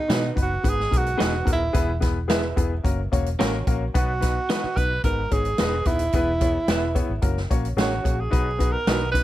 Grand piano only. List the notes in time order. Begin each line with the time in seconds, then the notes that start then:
Already playing: B2
0.08 B3 D#4 F#4 B4
0.36 B3 D#4 F#4 B4
0.63 G#2 B3 D#4 G#4 B4
0.91 B3 D#4 G#4 A#4
1.18 B3 D#4 G#4 B4
1.45 B3 D#4 G#4 A#4
1.73 E3 B3 E4 G#4 B4
2.00 B3 E4 G#4 B4
2.28 B3 E4 G#4 B4
2.56 B3 E4 G#4 B4
2.83 A#3 C#4 F#4 A#4
3.12 A#3 C#4 F#4 C#5
3.39 A#3 C#4 F#4 A#4
3.67 A#3 C#4 F#4 A#4
3.94 B2 B3 D#4 F#4 B4
4.21 B3 D#4 F#4 B4
4.49 B3 D#4 F#4 B4
4.77 B3 D#4 F#4 B4
5.04 G#2 B3 D#4 G#4 B4
5.31 B3 D#4 G#4 C#5
5.59 B3 D#4 G#4 B4
5.87 B3 D#4 G#4 B4
6.14 E3 B3 E4 G#4 B4
6.40 B3 E4 G#4 C#5
6.68 B3 E4 G#4 B4
6.95 B3 E4 G#4 C#5
7.22 A#3 C#4 F#4 A#4
7.50 A#3 C#4 F#4 C#5
7.77 A#3 C#4 F#4 G#4
8.04 A#3 C#4 F#4 G#4
8.31 B2 B3 D#4 F#4 B4
8.58 B3 D#4 F#4 B4
8.87 B3 D#4 F#4 B4
9.13 B3 D#4 F#4 B4